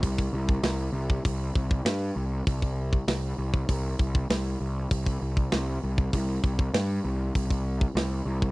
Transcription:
0.03 0.28 C2 medium
0.03 kick medium
0.03 open hi-hat medium
0.18 kick medium
0.33 0.58 C2 medium
0.49 kick medium
0.63 0.88 C2 medium
0.63 snare loud
0.63 open hi-hat medium
0.93 1.18 C2 medium
1.10 kick medium
1.25 1.50 C2 medium
1.25 kick medium
1.25 open hi-hat medium
1.55 1.80 C2 medium
1.55 kick medium
1.71 kick medium
1.85 2.10 G2 loud
1.85 snare loud
1.85 open hi-hat medium
2.16 2.41 C2 medium
2.47 2.96 C2 medium
2.47 kick loud
2.47 open hi-hat medium
2.62 kick medium
2.93 kick medium
3.08 3.33 C2 medium
3.08 snare loud
3.08 open hi-hat medium
3.38 3.63 C2 medium
3.54 kick medium
3.69 3.94 C2 medium
3.69 kick medium
3.69 open hi-hat medium
3.99 4.24 C2 medium
3.99 kick medium
4.15 kick medium
4.30 4.55 C2 medium
4.30 snare loud
4.30 open hi-hat medium
4.60 4.85 C2 medium
4.91 5.16 C2 loud
4.91 kick loud
4.91 open hi-hat medium
5.06 kick medium
5.21 5.46 C2 medium
5.37 kick medium
5.52 5.78 C2 medium
5.52 snare loud
5.52 open hi-hat medium
5.83 6.08 C2 medium
5.98 kick medium
6.13 6.38 C2 medium
6.13 kick medium
6.13 open hi-hat medium
6.43 6.68 C2 medium
6.43 kick medium
6.59 kick medium
6.74 6.99 G2 medium
6.74 snare loud
6.74 open hi-hat medium
7.04 7.29 C2 medium
7.35 7.85 C2 medium
7.35 kick loud
7.35 open hi-hat medium
7.50 kick medium
7.81 kick medium
7.95 8.20 C2 medium
7.95 snare medium
7.95 open hi-hat soft
8.25 8.51 C2 medium
8.42 kick medium

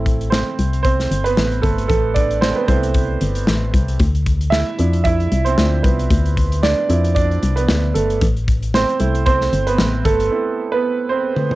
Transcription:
0.00 0.43 A1 loud
0.00 0.15 A3 soft
0.00 0.15 C4 soft
0.00 0.16 E4 soft
0.06 kick medium
0.06 closed hi-hat medium
0.21 closed hi-hat soft
0.30 0.81 C4 medium
0.30 0.81 C5 medium
0.30 snare medium
0.59 1.07 C2 medium
0.59 closed hi-hat medium
0.73 closed hi-hat soft
0.83 1.23 C4 medium
0.83 1.26 C5 medium
0.83 kick medium
0.83 closed hi-hat medium
1.00 snare soft
1.00 closed hi-hat soft
1.11 1.35 G1 medium
1.11 closed hi-hat medium
1.24 1.61 B3 medium
1.24 1.64 B4 medium
1.24 closed hi-hat soft
1.37 1.62 A1 medium
1.37 snare medium
1.52 closed hi-hat soft
1.62 1.88 G1 medium
1.62 1.88 A3 medium
1.62 1.87 A4 medium
1.62 kick medium
1.62 closed hi-hat medium
1.79 closed hi-hat soft
1.88 2.54 A1 medium
1.88 2.14 A3 medium
1.88 2.16 A4 medium
1.88 kick medium
1.88 closed hi-hat medium
2.15 2.41 D4 medium
2.15 2.42 D5 medium
2.15 kick medium
2.15 closed hi-hat medium
2.31 closed hi-hat soft
2.41 2.56 C4 medium
2.41 2.56 C5 medium
2.41 snare medium
2.56 2.68 B3 medium
2.56 2.68 B4 medium
2.68 3.18 C2 medium
2.68 3.04 A3 soft
2.68 3.70 C4 medium
2.68 3.05 E4 medium
2.68 3.70 C5 medium
2.68 kick medium
2.68 closed hi-hat medium
2.84 closed hi-hat soft
2.95 kick medium
2.95 closed hi-hat medium
3.21 3.46 G1 medium
3.21 closed hi-hat medium
3.35 closed hi-hat soft
3.47 3.72 A1 medium
3.47 snare medium
3.74 3.98 C2 medium
3.74 kick medium
3.74 closed hi-hat medium
3.88 closed hi-hat soft
3.99 4.64 D2 loud
3.99 kick medium
3.99 closed hi-hat medium
4.15 closed hi-hat soft
4.26 kick medium
4.26 closed hi-hat medium
4.41 closed hi-hat soft
4.50 4.78 E4 medium
4.50 5.02 E5 medium
4.50 snare medium
4.78 5.28 F2 medium
4.78 5.56 F3 soft
4.78 5.56 D4 soft
4.78 5.05 E4 medium
4.78 closed hi-hat medium
4.93 closed hi-hat soft
5.04 5.44 E4 medium
5.04 5.43 E5 medium
5.04 kick medium
5.04 closed hi-hat medium
5.20 closed hi-hat soft
5.32 5.56 C2 medium
5.32 closed hi-hat medium
5.45 5.82 C4 medium
5.45 5.85 C5 medium
5.45 closed hi-hat soft
5.57 5.83 D2 medium
5.57 5.81 F3 soft
5.57 5.82 D4 soft
5.57 5.82 E4 soft
5.57 snare medium
5.83 6.09 C2 medium
5.83 6.09 B3 soft
5.83 6.08 B4 medium
5.83 kick medium
5.83 closed hi-hat medium
5.99 closed hi-hat soft
6.11 6.75 D2 loud
6.11 kick medium
6.11 closed hi-hat medium
6.26 closed hi-hat soft
6.37 kick medium
6.37 closed hi-hat medium
6.52 closed hi-hat soft
6.63 6.88 D4 medium
6.63 7.13 D5 medium
6.63 snare medium
6.89 7.39 F2 medium
6.89 7.25 F3 soft
6.89 7.15 D4 soft
6.89 7.26 E4 medium
6.89 closed hi-hat medium
7.05 closed hi-hat soft
7.15 7.54 D4 medium
7.15 7.58 D5 medium
7.15 kick medium
7.15 closed hi-hat medium
7.31 closed hi-hat soft
7.43 7.67 C2 medium
7.43 closed hi-hat medium
7.56 7.93 B3 medium
7.56 7.95 B4 medium
7.56 closed hi-hat soft
7.69 7.94 D2 medium
7.69 snare loud
7.94 8.20 G1 medium
7.94 8.20 A3 soft
7.94 8.19 A4 medium
7.94 closed hi-hat medium
8.10 closed hi-hat soft
8.21 8.86 A1 loud
8.21 kick loud
8.21 closed hi-hat medium
8.37 closed hi-hat soft
8.48 kick medium
8.48 closed hi-hat medium
8.63 closed hi-hat soft
8.74 8.98 C4 medium
8.74 9.24 C5 medium
8.74 snare medium
8.89 closed hi-hat soft
8.99 9.49 C2 medium
8.99 9.36 A3 soft
8.99 9.25 C4 soft
8.99 9.36 E4 medium
8.99 closed hi-hat medium
9.15 closed hi-hat soft
9.26 9.65 C4 medium
9.26 9.68 C5 loud
9.26 kick medium
9.26 closed hi-hat medium
9.41 snare soft
9.53 9.77 G1 medium
9.53 closed hi-hat medium
9.67 10.03 B3 medium
9.67 10.06 B4 medium
9.67 closed hi-hat soft
9.78 10.04 A1 medium
9.78 snare medium
10.05 10.30 G1 medium
10.05 10.29 A3 medium
10.05 10.75 A4 medium
10.05 kick medium
10.05 closed hi-hat medium
10.20 closed hi-hat soft
10.31 10.67 A3 soft
10.31 10.68 C4 soft
10.31 10.68 E4 medium
10.72 11.09 B3 medium
10.72 11.08 B4 medium
11.09 11.55 C4 medium
11.09 11.55 C5 medium
11.36 high tom soft
11.51 high tom soft

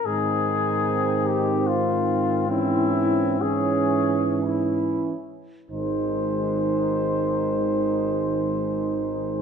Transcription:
0.04 5.13 G#2 soft
0.04 2.46 D#3 soft
0.04 2.46 C4 soft
0.04 1.62 D#4 soft
0.04 1.28 G#4 medium
1.27 1.69 G4 soft
1.67 3.41 C4 soft
1.67 2.50 F4 soft
2.49 3.38 E3 soft
2.49 3.38 C#4 soft
2.49 3.43 E4 medium
3.40 5.14 E3 soft
3.40 5.13 C#4 soft
3.40 4.45 C#4 soft
3.40 4.45 G#4 medium
4.44 5.06 E4 soft
5.71 9.42 G#1 soft
5.71 9.42 D#3 soft
5.71 9.42 G#3 soft
5.71 9.42 D#4 soft
5.71 9.42 C5 soft

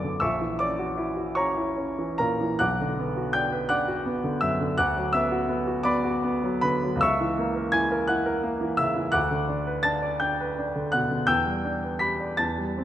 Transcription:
0.00 0.15 B1 medium
0.00 0.14 F#2 soft
0.00 0.04 D3 soft
0.00 0.25 B3 soft
0.00 0.24 D4 soft
0.00 0.25 F#4 medium
0.00 0.24 B4 soft
0.00 0.19 D5 medium
0.00 0.21 E5 medium
0.00 0.24 F#5 medium
0.00 0.21 D6 medium
0.00 0.20 E6 medium
0.00 0.24 F#6 medium
0.04 0.22 D3 soft
0.20 2.56 A#1 medium
0.20 0.57 E5 medium
0.20 0.56 C#6 medium
0.20 0.59 E6 medium
0.41 0.71 E3 soft
0.59 0.90 C#4 soft
0.59 1.32 D5 medium
0.59 1.36 D6 medium
0.79 1.09 F#4 soft
0.98 1.28 E4 medium
1.17 1.48 F#4 soft
1.35 1.69 C#4 soft
1.35 2.15 C#5 medium
1.35 2.15 A#5 medium
1.35 2.19 C#6 medium
1.57 1.90 E4 soft
1.77 2.11 C#4 soft
1.99 2.32 E3 soft
2.18 2.53 A#2 soft
2.18 2.57 A#4 medium
2.18 2.60 A#5 medium
2.41 2.60 E3 soft
2.59 4.74 B1 medium
2.59 3.30 F#5 medium
2.59 3.30 D6 medium
2.59 3.34 F#6 medium
2.81 3.10 D3 soft
2.99 3.28 B3 medium
3.17 3.45 F#4 soft
3.33 3.63 D4 medium
3.33 3.67 G5 medium
3.33 3.69 G6 medium
3.52 3.81 B4 medium
3.69 3.99 D4 medium
3.69 4.38 F#5 medium
3.69 4.38 D6 medium
3.69 4.42 F#6 medium
3.88 4.17 F#4 medium
4.06 4.35 B3 medium
4.24 4.53 D3 soft
4.41 4.71 F#2 soft
4.41 4.75 E5 medium
4.41 4.77 E6 medium
4.61 4.78 D3 soft
4.78 6.98 D2 medium
4.78 5.11 F#5 medium
4.78 5.11 D6 medium
4.78 5.13 F#6 medium
4.96 5.24 F#3 medium
5.13 5.42 B3 medium
5.13 5.81 E5 medium
5.13 5.84 E6 medium
5.32 5.60 F#4 medium
5.49 5.77 B3 medium
5.67 5.96 F#4 medium
5.83 6.15 B3 medium
5.83 6.59 D5 medium
5.83 6.59 B5 medium
5.83 6.62 D6 medium
6.04 6.35 F#4 medium
6.24 6.55 B3 medium
6.43 6.75 F#3 medium
6.61 6.94 D3 medium
6.61 6.99 B4 medium
6.61 7.01 B5 loud
6.83 7.02 F#3 medium
6.96 9.04 C#2 medium
7.01 7.69 E5 medium
7.01 7.69 C#6 medium
7.01 7.73 E6 loud
7.21 7.49 E3 medium
7.39 7.66 A#3 medium
7.56 7.84 A#4 soft
7.72 8.01 E4 medium
7.72 8.06 G#5 medium
7.72 8.08 G#6 loud
7.92 8.19 A#4 medium
8.07 8.36 E4 medium
8.07 8.73 F#5 medium
8.07 8.77 F#6 medium
8.26 8.53 A#4 medium
8.43 8.70 A#3 medium
8.61 8.88 E3 medium
8.77 9.05 C#3 soft
8.77 9.09 E5 medium
8.77 9.11 E6 medium
8.96 9.12 E3 medium
9.12 11.25 D2 medium
9.12 9.80 F#5 medium
9.12 9.80 D6 medium
9.12 9.83 F#6 medium
9.31 9.58 D3 medium
9.48 9.77 D4 medium
9.67 9.95 B4 medium
9.83 10.14 D4 medium
9.83 10.18 A5 medium
9.83 10.20 A6 loud
10.02 10.32 D5 medium
10.20 10.50 D4 medium
10.20 10.89 G5 medium
10.20 10.93 G6 medium
10.40 10.69 B4 medium
10.59 10.87 D4 medium
10.76 11.04 D3 medium
10.92 11.21 B2 soft
10.92 11.26 F#5 medium
10.92 11.28 F#6 medium
11.11 11.28 D3 soft
11.27 12.36 E2 medium
11.27 11.97 G5 medium
11.27 11.97 E6 medium
11.27 12.01 G6 medium
11.46 11.75 G3 soft
11.65 11.94 D4 soft
11.83 12.13 B4 soft
11.99 12.31 G4 soft
11.99 12.36 B5 medium
11.99 12.38 B6 medium
12.20 12.39 D5 soft
12.37 12.84 E2 medium
12.37 12.84 A5 medium
12.37 12.84 A6 medium
12.58 12.84 G3 soft
12.78 12.84 C4 soft

